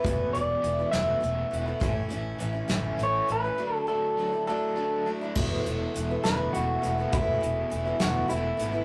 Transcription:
Already playing: overdriven electric guitar E3 A3 B3, clean electric guitar B4
0.04 fingered electric bass E1, steel-string acoustic guitar E2 B2 E3 A3 B3 E4, kick, closed hi-hat
0.33 fingered electric bass E1, overdriven electric guitar B2, steel-string acoustic guitar E3 A3, clean electric guitar D5, closed hi-hat
0.38 steel-string acoustic guitar B3 E4
0.64 fingered electric bass E1, steel-string acoustic guitar E3 A3 B3 E4, closed hi-hat
0.79 steel-string acoustic guitar E3 A3 B3 E4
0.91 fingered electric bass E1, steel-string acoustic guitar E2 B2 E3 A3 B3 E4, clean electric guitar E5, snare, closed hi-hat
1.20 fingered electric bass E1, steel-string acoustic guitar E3 A3 B3 E4, closed hi-hat
1.51 fingered electric bass E1, steel-string acoustic guitar E3 A3 B3 E4, closed hi-hat
1.65 steel-string acoustic guitar E3 A3 B3 E4
1.80 fingered electric bass A1, steel-string acoustic guitar A2 E3 A3 C#4 E4, kick, closed hi-hat
2.09 steel-string acoustic guitar E3 A3 C#4 E4, closed hi-hat
2.14 fingered electric bass A1
2.38 fingered electric bass A1, steel-string acoustic guitar E3 A3 C#4 E4, closed hi-hat
2.53 steel-string acoustic guitar A3 C#4 E4
2.68 fingered electric bass A1, steel-string acoustic guitar A2 E3 A3 C#4 E4, snare, closed hi-hat
2.97 fingered electric bass A1, steel-string acoustic guitar E3 A3 C#4 E4, closed hi-hat
3.03 clean electric guitar C#5
3.27 fingered electric bass A1, steel-string acoustic guitar E3 A3 C#4 E4, closed hi-hat
3.32 clean electric guitar B4
3.44 steel-string acoustic guitar A3 C#4 E4
3.58 steel-string acoustic guitar D3 F#3 A3 D4 E4
3.74 clean electric guitar A4
3.87 steel-string acoustic guitar F#3 A3 D4 E4, clean electric guitar A4
4.18 steel-string acoustic guitar F#3 A3 D4 E4
4.32 steel-string acoustic guitar A3 D4 E4
4.47 steel-string acoustic guitar D3 F#3 A3 D4 E4, clean electric guitar A4
4.76 steel-string acoustic guitar F#3 A3 D4 E4
5.06 steel-string acoustic guitar F#3 A3 D4 E4
5.21 steel-string acoustic guitar A3 D4 E4
5.34 fingered electric bass E1, steel-string acoustic guitar E2 B2 E3 A3 B3 E4, tonewheel organ E3 A3 B3 E4, kick, crash
5.63 fingered electric bass E1, overdriven electric guitar B2, steel-string acoustic guitar E3 A3 B3 E4, closed hi-hat
5.94 fingered electric bass E1, steel-string acoustic guitar E3 A3 B3 E4, closed hi-hat
6.09 steel-string acoustic guitar E3 A3 B3 E4
6.23 fingered electric bass E1, steel-string acoustic guitar E2 B2 E3 A3 B3 E4, clean electric guitar B4, snare, closed hi-hat
6.53 fingered electric bass E1, steel-string acoustic guitar E3 A3 B3, clean electric guitar F#4, closed hi-hat
6.57 steel-string acoustic guitar E4
6.82 fingered electric bass E1, steel-string acoustic guitar E3 A3 B3 E4, closed hi-hat
6.98 steel-string acoustic guitar E3 A3 B3 E4
7.12 fingered electric bass E1, steel-string acoustic guitar E2 B2 E3 A3 B3 E4, clean electric guitar E4, kick, closed hi-hat
7.40 fingered electric bass E1, overdriven electric guitar B2, steel-string acoustic guitar E3 A3 B3 E4, closed hi-hat
7.70 fingered electric bass E1, steel-string acoustic guitar E3 A3 B3 E4, closed hi-hat
7.85 steel-string acoustic guitar E3 A3 B3 E4
8.00 fingered electric bass E1, steel-string acoustic guitar E2 B2 E3 A3 B3 E4, clean electric guitar F#4, snare, closed hi-hat
8.28 fingered electric bass E1, steel-string acoustic guitar E3 A3 B3 E4, clean electric guitar E4, closed hi-hat
8.57 fingered electric bass G#1, steel-string acoustic guitar E3 A3 B3 E4, closed hi-hat
8.72 steel-string acoustic guitar E3 A3 B3 E4

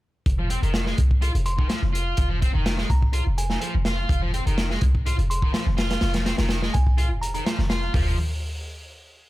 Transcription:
0.26 808-style bass F1, kick, closed hi-hat
0.39 distorted electric guitar F3
0.50 distorted electric guitar C4, closed hi-hat
0.63 808-style bass F1, distorted electric guitar D#3, closed hi-hat
0.74 snare, closed hi-hat
0.86 distorted electric guitar G#3, snare
0.98 808-style bass C2, kick, closed hi-hat
1.11 kick
1.22 distorted electric guitar F4, closed hi-hat
1.35 808-style bass F1, closed hi-hat
1.46 synth bell C6, closed hi-hat
1.58 distorted electric guitar D#3, kick
1.70 distorted electric guitar F3, snare, closed hi-hat
1.83 808-style bass F1
1.93 distorted electric guitar F4, closed hi-hat
2.17 808-style bass F1, kick, closed hi-hat
2.30 distorted electric guitar F3
2.41 distorted electric guitar C4, kick, closed hi-hat
2.54 808-style bass F1, distorted electric guitar D#3
2.66 snare, closed hi-hat
2.78 distorted electric guitar G#3, snare
2.90 808-style bass C2, synth bell A#5, kick, closed hi-hat
3.02 kick
3.13 distorted electric guitar F4, closed hi-hat
3.27 808-style bass F1
3.38 synth bell G#5, closed hi-hat
3.50 distorted electric guitar D#3, synth bell G#5, snare
3.61 distorted electric guitar F3, closed hi-hat
3.75 808-style bass F1
3.85 distorted electric guitar F4, snare, closed hi-hat
4.09 808-style bass F1, kick, closed hi-hat
4.22 distorted electric guitar F3
4.33 distorted electric guitar C4, closed hi-hat
4.46 808-style bass F1, distorted electric guitar D#3, closed hi-hat
4.58 snare, closed hi-hat
4.70 distorted electric guitar G#3, snare
4.81 808-style bass C2, kick, closed hi-hat
4.95 kick
5.06 distorted electric guitar F4, closed hi-hat
5.18 808-style bass F1, closed hi-hat
5.30 synth bell C6, closed hi-hat
5.42 distorted electric guitar D#3, kick
5.54 distorted electric guitar F3, snare, closed hi-hat
5.66 808-style bass F1
5.77 distorted electric guitar F4, snare, closed hi-hat
5.90 snare, closed hi-hat
6.01 808-style bass F1, snare, closed hi-hat
6.14 distorted electric guitar F3, snare, closed hi-hat
6.25 distorted electric guitar C4, snare, closed hi-hat
6.38 808-style bass F1, distorted electric guitar D#3, snare, closed hi-hat
6.49 snare, closed hi-hat
6.62 distorted electric guitar G#3, snare
6.74 808-style bass C2, synth bell G#5, kick, closed hi-hat
6.87 kick
6.98 distorted electric guitar F4, closed hi-hat
7.10 808-style bass F1
7.21 synth bell A#5, closed hi-hat
7.34 distorted electric guitar D#3, synth bell A#5, closed hi-hat
7.46 distorted electric guitar F3, snare, closed hi-hat
7.59 808-style bass F1, snare
7.70 distorted electric guitar F4, snare, closed hi-hat
7.94 808-style bass F1, distorted electric guitar F3, kick, floor tom, open hi-hat

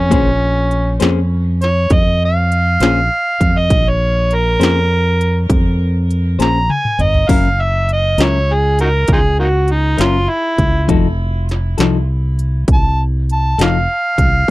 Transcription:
Already playing: harmonica C#4
0.10 fingered electric bass A#1, clean electric guitar A#3 C#4 G#4 C5, kick, closed hi-hat
0.71 closed hi-hat
1.00 fingered electric bass F2, clean electric guitar A#3 C#4 G#4 C5, snare, closed hi-hat
1.62 harmonica C#5, snare, closed hi-hat
1.90 fingered electric bass F2, harmonica D#5, kick, closed hi-hat
2.25 harmonica F5
2.52 closed hi-hat
2.80 fingered electric bass A#1, clean electric guitar A#3 C#4 G#4 C5, snare, closed hi-hat
3.41 fingered electric bass F2, kick, closed hi-hat
3.58 harmonica D#5
3.70 fingered electric bass A#1, kick, closed hi-hat
3.89 harmonica C#5
4.31 harmonica A#4, closed hi-hat
4.60 fingered electric bass F2, clean electric guitar A#3 C#4 G#4 C5, snare, closed hi-hat
5.21 closed hi-hat
5.50 fingered electric bass F2, kick, closed hi-hat
6.11 closed hi-hat
6.39 fingered electric bass A#1, clean electric guitar A#3 C#4 G#4 C5, harmonica A#5, snare, closed hi-hat
6.69 harmonica G#5, high tom
6.85 mid tom
6.99 fingered electric bass G1, harmonica D#5, closed hi-hat, mid tom
7.14 floor tom
7.29 fingered electric bass F#1, clean electric guitar F#3 C#4 E4 A#4, harmonica F5, kick, closed hi-hat, splash
7.62 harmonica E5
7.89 harmonica D#5, closed hi-hat
8.18 fingered electric bass C#2, clean electric guitar F#3 C#4 E4 A#4, snare, closed hi-hat
8.23 harmonica C#5
8.53 harmonica G#4
8.79 harmonica D#4 F#4 A#4, closed hi-hat
9.08 fingered electric bass C#2, kick, closed hi-hat
9.13 harmonica D#4 F4 G#4
9.39 harmonica A#3 D#4 F#4
9.68 harmonica D#4, closed hi-hat
9.97 fingered electric bass F#1, clean electric guitar F#3 C#4 E4 A#4, snare, closed hi-hat
10.02 harmonica F4
10.29 harmonica E4
10.58 fingered electric bass C#2, kick, closed hi-hat
10.88 fingered electric bass F1, clean electric guitar F3 D#4 F#4 A4, kick, closed hi-hat
11.49 snare, closed hi-hat
11.78 fingered electric bass C2, clean electric guitar F3 D#4 F#4 A4, snare, closed hi-hat
12.39 closed hi-hat
12.68 fingered electric bass C2, kick, closed hi-hat
12.73 harmonica A5
13.30 harmonica A5, closed hi-hat
13.58 fingered electric bass F1, clean electric guitar F3 D#4 F#4 A4, snare, closed hi-hat
13.63 harmonica F5
14.18 fingered electric bass C2, kick, closed hi-hat

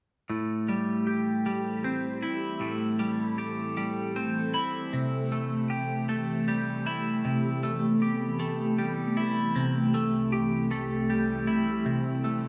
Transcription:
0.30 clean electric guitar A2, ambient pad E3 A3 C4 G4
0.68 clean electric guitar G3
1.07 clean electric guitar G4
1.46 clean electric guitar G3
1.84 clean electric guitar C4
2.23 clean electric guitar E4
2.61 clean electric guitar A2, ambient pad A4
2.99 clean electric guitar G3
3.38 clean electric guitar G4
3.77 clean electric guitar G3
4.16 clean electric guitar C4
4.54 clean electric guitar E4
4.93 clean electric guitar C3, ambient pad C4 G4
5.32 clean electric guitar A3
5.70 clean electric guitar G4
6.09 clean electric guitar A3
6.48 clean electric guitar G3
6.87 clean electric guitar E4
7.25 clean electric guitar C3, ambient pad B3
7.63 clean electric guitar A3
8.02 clean electric guitar G4
8.39 clean electric guitar A3
8.78 clean electric guitar G3
9.17 clean electric guitar E4
9.55 ambient pad C2 C4, clean electric guitar C3
9.94 clean electric guitar A3
10.32 clean electric guitar G4
10.71 clean electric guitar A3
11.10 clean electric guitar G3
11.47 clean electric guitar E4
11.86 clean electric guitar C3
12.24 clean electric guitar A3

